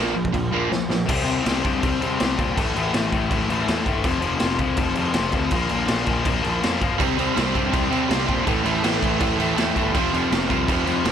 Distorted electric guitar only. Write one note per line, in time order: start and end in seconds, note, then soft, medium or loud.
0.00 0.14 A#2 loud
0.00 0.13 F3 loud
0.00 0.15 A#3 loud
0.14 0.32 A#2 medium
0.14 0.32 F3 medium
0.33 0.50 A#2 medium
0.33 0.50 F3 medium
0.51 0.68 A#2 medium
0.51 0.68 F3 loud
0.51 0.70 A#3 loud
0.69 0.87 A#2 medium
0.69 0.87 F3 medium
0.89 1.05 A#2 medium
0.89 1.07 F3 medium
1.06 1.23 C3 medium
1.06 1.24 G3 loud
1.06 1.25 C4 loud
1.24 1.42 C3 medium
1.24 1.43 G3 medium
1.24 1.45 C4 loud
1.44 1.62 C3 loud
1.44 1.62 G3 medium
1.44 1.64 C4 loud
1.63 1.80 C3 medium
1.63 1.81 G3 loud
1.63 1.82 C4 loud
1.81 2.00 C3 medium
1.81 2.00 G3 loud
1.81 2.02 C4 medium
2.01 2.18 C3 medium
2.01 2.19 G3 loud
2.01 2.20 C4 loud
2.19 2.36 C3 loud
2.19 2.37 G3 loud
2.19 2.38 C4 loud
2.37 2.55 C3 medium
2.37 2.56 G3 medium
2.37 2.57 C4 loud
2.56 2.74 A2 medium
2.56 2.74 E3 loud
2.56 2.76 A3 loud
2.75 2.92 A2 medium
2.75 2.93 E3 medium
2.75 2.94 A3 loud
2.94 3.10 A2 medium
2.94 3.11 E3 medium
2.94 3.12 A3 loud
3.11 3.29 A2 loud
3.11 3.29 E3 loud
3.11 3.30 A3 loud
3.30 3.48 A2 medium
3.30 3.48 E3 loud
3.30 3.49 A3 loud
3.49 3.64 A2 medium
3.49 3.65 E3 medium
3.49 3.66 A3 loud
3.65 3.84 A2 loud
3.65 3.85 E3 loud
3.65 3.85 A3 loud
3.85 4.03 A2 medium
3.85 4.03 E3 loud
3.85 4.03 A3 medium
4.03 4.19 F2 loud
4.03 4.20 C3 loud
4.03 4.21 F3 loud
4.20 4.37 F2 medium
4.20 4.37 C3 medium
4.20 4.39 F3 medium
4.38 4.57 F2 medium
4.38 4.58 C3 medium
4.38 4.59 F3 loud
4.58 4.76 F2 loud
4.58 4.76 C3 loud
4.58 4.76 F3 loud
4.77 4.95 F2 medium
4.77 4.95 C3 loud
4.77 4.96 F3 loud
4.96 5.12 F2 medium
4.96 5.13 C3 loud
4.96 5.14 F3 loud
5.13 5.32 F2 loud
5.13 5.32 C3 loud
5.13 5.34 F3 loud
5.33 5.51 F2 medium
5.33 5.51 C3 medium
5.33 5.51 F3 loud
5.52 5.68 A#2 loud
5.52 5.69 F3 loud
5.52 5.69 A#3 loud
5.69 5.86 A#2 medium
5.69 5.87 F3 medium
5.69 5.87 A#3 loud
5.87 6.04 A#2 medium
5.87 6.05 F3 medium
5.87 6.05 A#3 loud
6.05 6.22 A#2 loud
6.05 6.23 F3 loud
6.05 6.24 A#3 loud
6.24 6.41 A#2 medium
6.24 6.42 F3 loud
6.24 6.42 A#3 loud
6.42 6.61 A#2 medium
6.42 6.61 F3 medium
6.42 6.62 A#3 loud
6.62 6.79 A#2 loud
6.62 6.81 F3 loud
6.62 6.81 A#3 loud
6.81 6.98 A#2 medium
6.81 6.99 F3 loud
6.81 6.99 A#3 loud
7.00 7.18 C3 loud
7.00 7.18 G3 loud
7.00 7.19 C4 loud
7.19 7.35 C3 medium
7.19 7.36 G3 medium
7.19 7.37 C4 loud
7.36 7.53 C3 medium
7.36 7.54 G3 medium
7.36 7.54 C4 medium
7.54 7.71 C3 loud
7.54 7.73 G3 loud
7.54 7.73 C4 loud
7.72 7.90 C3 medium
7.72 7.91 G3 medium
7.72 7.92 C4 loud
7.91 8.08 C3 medium
7.91 8.08 G3 medium
7.91 8.10 C4 loud
8.09 8.26 C3 loud
8.09 8.27 G3 loud
8.09 8.29 C4 loud
8.28 8.44 C3 medium
8.28 8.46 G3 medium
8.28 8.46 C4 loud
8.45 8.64 A2 loud
8.45 8.64 E3 loud
8.45 8.65 A3 loud
8.65 8.82 A2 medium
8.65 8.83 E3 loud
8.65 8.85 A3 medium
8.83 8.99 A2 medium
8.83 9.00 E3 loud
8.83 9.01 A3 loud
9.00 9.18 A2 loud
9.00 9.18 E3 loud
9.00 9.18 A3 loud
9.19 9.36 A2 loud
9.19 9.36 E3 medium
9.19 9.37 A3 medium
9.37 9.55 A2 medium
9.37 9.55 E3 medium
9.37 9.55 A3 loud
9.56 9.73 A2 loud
9.56 9.74 E3 loud
9.56 9.74 A3 loud
9.74 9.92 A2 medium
9.74 9.93 E3 medium
9.74 9.93 A3 medium
9.92 10.12 F2 loud
9.92 10.12 C3 loud
9.92 10.13 F3 loud
10.13 10.29 F2 medium
10.13 10.29 C3 medium
10.13 10.31 F3 loud
10.30 10.47 F2 medium
10.30 10.48 C3 medium
10.30 10.49 F3 loud
10.48 10.66 F2 loud
10.48 10.66 C3 loud
10.48 10.67 F3 loud
10.67 10.84 F2 medium
10.67 10.85 C3 loud
10.67 10.86 F3 loud
10.85 11.04 F2 medium
10.85 11.04 C3 loud
10.85 11.04 F3 loud
11.05 11.12 F2 loud
11.05 11.12 C3 loud
11.05 11.12 F3 loud